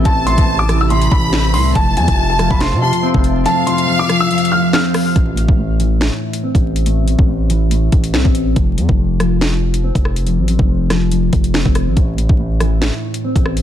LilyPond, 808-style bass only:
\new Staff \with { instrumentName = "808-style bass" } { \clef bass \time 4/4 \key a \minor \tempo 4 = 141 a,,8. a,,4.~ a,,16 a,,4 c,8 | f,,8 f,16 f,,4 f,,8 c8 r8 f,,8. | r1 | a,,8. a,,4. r4 a,,8.~ |
a,,8. a,,4.~ a,,16 a,,8 c,16 a,,8. | f,,8 f,16 f,,2~ f,,8 f,,8.~ | f,,16 a,,8 f,,4.~ f,,16 f,,8. f,,8 a,,16 | a,,8. a,,4. r4 a,,8. | }